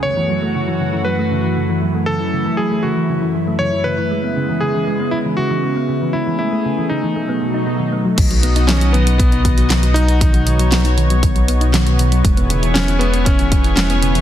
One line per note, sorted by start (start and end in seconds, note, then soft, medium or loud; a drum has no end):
0.03 4.07 F#2 medium
0.03 0.16 C#3 medium
0.03 4.07 E3 medium
0.03 4.07 A3 medium
0.03 2.06 F#4 medium
0.03 1.01 C#5 loud
0.17 0.22 E3 loud
0.30 0.42 F#3 medium
0.42 0.51 A3 medium
0.55 0.60 C#3 medium
0.68 0.80 E3 medium
0.80 0.93 C#3 medium
0.93 0.99 E3 loud
1.05 1.18 F#3 medium
1.05 1.78 B4 medium
1.19 1.27 A3 medium
1.31 1.37 C#3 medium
1.44 1.56 E3 medium
1.57 1.69 C#3 medium
1.69 1.75 E3 medium
1.82 1.94 F#3 medium
1.95 2.04 A3 medium
2.06 2.13 C#3 medium
2.06 6.10 E4 medium
2.06 2.59 A4 loud
2.20 2.32 E3 medium
2.33 2.45 C#3 medium
2.46 2.51 E3 medium
2.57 2.71 F#3 medium
2.57 2.84 G#4 medium
2.71 2.80 A3 medium
2.83 2.89 C#3 medium
2.83 3.31 F#4 medium
2.97 3.09 E3 medium
3.09 3.21 C#3 medium
3.22 3.27 E3 loud
3.35 3.47 F#3 medium
3.48 3.56 A3 medium
3.59 3.66 C#3 medium
3.59 3.86 C#5 loud
3.73 3.85 E3 medium
3.84 3.98 C#3 medium
3.84 4.63 B4 loud
3.98 4.04 E3 loud
4.11 7.13 C#3 medium
4.11 6.12 G#3 medium
4.11 4.23 G#3 medium
4.11 7.13 B3 medium
4.24 4.33 B3 medium
4.37 4.42 C#3 medium
4.49 4.61 E3 medium
4.60 4.74 C#3 medium
4.60 5.08 G#4 medium
4.75 4.80 E3 loud
4.87 4.99 G#3 medium
5.00 5.09 B3 medium
5.11 5.18 C#3 medium
5.11 5.17 E4 medium
5.26 5.38 E3 medium
5.37 5.50 C#3 medium
5.37 6.16 F#4 medium
5.51 5.56 E3 medium
5.64 5.76 G#3 medium
5.76 5.85 B3 medium
5.89 5.94 C#3 medium
6.02 6.14 E3 medium
6.13 6.27 C#3 medium
6.13 8.16 A3 medium
6.13 6.37 E4 medium
6.13 7.15 G#4 medium
6.27 6.32 E3 loud
6.39 6.52 G#3 medium
6.39 6.86 E4 medium
6.53 6.61 A3 medium
6.65 6.71 C#3 medium
6.78 6.90 E3 medium
6.89 7.03 C#3 medium
6.89 7.62 D#4 medium
7.03 7.09 E3 loud
7.16 8.17 B2 medium
7.16 8.17 F#3 medium
7.16 7.28 A3 medium
7.16 8.17 D#4 medium
7.29 7.38 B3 medium
7.41 7.47 F#3 medium
7.54 7.60 D#4 medium
7.67 7.76 F#3 medium
7.80 7.85 D#3 medium
7.92 8.01 B3 medium
8.05 8.10 F#3 medium
8.18 12.22 B1 medium
8.18 8.27 D#3 medium
8.18 14.21 B3 medium
8.18 12.21 D#4 medium
8.18 12.21 F#4 medium
8.18 10.19 D#5 medium
8.18 kick loud
8.18 closed hi-hat loud
8.18 crash loud
8.31 8.36 F#3 medium
8.31 closed hi-hat soft
8.43 8.55 B3 medium
8.43 closed hi-hat medium
8.56 8.68 D#4 medium
8.56 closed hi-hat soft
8.67 8.78 D#3 loud
8.67 8.94 C#4 medium
8.67 snare loud
8.67 clap loud
8.67 closed hi-hat loud
8.81 8.87 F#3 medium
8.81 closed hi-hat soft
8.93 9.03 D#3 medium
8.93 9.17 B3 medium
8.93 closed hi-hat soft
9.07 9.12 F#3 medium
9.07 closed hi-hat soft
9.18 9.97 B3 medium
9.18 9.32 B3 medium
9.18 kick loud
9.18 closed hi-hat medium
9.32 9.44 D#4 medium
9.32 closed hi-hat soft
9.45 9.54 D#3 loud
9.45 kick loud
9.45 closed hi-hat medium
9.58 9.63 F#3 medium
9.58 closed hi-hat soft
9.70 9.79 D#3 medium
9.70 snare loud
9.70 clap loud
9.70 closed hi-hat medium
9.83 9.88 F#3 medium
9.83 closed hi-hat soft
9.94 10.08 B3 medium
9.94 10.93 D#4 loud
9.94 closed hi-hat medium
10.08 10.20 D#4 medium
10.08 closed hi-hat soft
10.21 10.30 D#3 loud
10.21 12.23 C#5 medium
10.21 kick loud
10.21 closed hi-hat loud
10.34 10.39 F#3 medium
10.34 closed hi-hat soft
10.47 10.55 D#3 medium
10.47 closed hi-hat medium
10.59 10.65 F#3 medium
10.59 closed hi-hat soft
10.72 10.84 B3 medium
10.72 snare loud
10.72 clap loud
10.72 closed hi-hat loud
10.85 10.97 D#4 medium
10.85 closed hi-hat soft
10.97 11.06 D#3 loud
10.97 closed hi-hat soft
11.10 11.15 F#3 medium
11.10 closed hi-hat soft
11.23 11.32 D#3 medium
11.23 kick loud
11.23 closed hi-hat loud
11.35 11.41 F#3 medium
11.35 closed hi-hat soft
11.48 11.60 B3 medium
11.48 closed hi-hat medium
11.61 11.73 D#4 medium
11.61 closed hi-hat soft
11.74 11.83 D#3 loud
11.74 snare loud
11.74 clap medium
11.74 closed hi-hat medium
11.86 11.92 F#3 medium
11.86 closed hi-hat soft
11.99 12.08 D#3 medium
11.99 closed hi-hat medium
12.12 12.17 F#3 medium
12.12 closed hi-hat soft
12.25 14.21 E1 medium
12.25 12.37 G#3 medium
12.25 14.21 E4 medium
12.25 14.21 G#4 medium
12.25 14.21 C#5 medium
12.25 kick loud
12.25 closed hi-hat medium
12.37 12.49 B3 medium
12.37 closed hi-hat soft
12.50 12.59 C#3 loud
12.50 closed hi-hat medium
12.63 12.68 E3 medium
12.63 closed hi-hat soft
12.74 12.84 C#3 medium
12.74 13.01 C#4 loud
12.74 snare loud
12.74 clap medium
12.74 closed hi-hat loud
12.88 12.94 E3 medium
12.88 closed hi-hat soft
12.99 13.13 G#3 medium
12.99 13.26 B3 loud
12.99 closed hi-hat soft
13.14 13.26 B3 medium
13.14 closed hi-hat soft
13.25 13.35 C#3 loud
13.25 13.74 C#4 loud
13.25 kick loud
13.25 closed hi-hat loud
13.39 13.44 E3 medium
13.39 closed hi-hat soft
13.52 13.61 C#3 medium
13.52 kick loud
13.52 closed hi-hat medium
13.64 13.70 E3 medium
13.64 closed hi-hat soft
13.76 13.89 G#3 medium
13.76 14.21 C#4 loud
13.76 snare loud
13.76 clap loud
13.76 closed hi-hat loud
13.90 14.02 B3 medium
13.90 closed hi-hat soft
14.03 14.12 C#3 loud
14.03 closed hi-hat medium
14.15 14.21 E3 medium
14.15 closed hi-hat soft